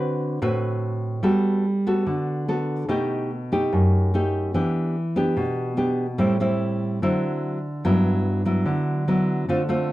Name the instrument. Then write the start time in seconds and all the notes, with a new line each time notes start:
nylon-string guitar
Already playing: D3 C4 F#4 B4
0.42 A2 C4 F#4 B4
1.23 G3 B3 F#4 A4
1.87 B3 F#4 A4
2.06 D3
2.48 B3 F#4 A4
2.88 B2 A3 D#4 G4
3.52 A3 D#4 G4
3.73 F#2
4.14 A3 D#4 G4
4.54 E3 B3 D4 G4
5.16 B3 D4 G4
5.37 B2
5.77 B3 D4 G4
6.18 A2 G3 C4 E4
6.40 G3 C4 E4
7.02 D3 F#3 C4 E4
7.85 G2 F#3 B3 E4
8.45 F#3 B3 E4
8.66 D3
9.08 F#3 B3 E4
9.48 D3 A3 C4 F4
9.69 A3 C4 F4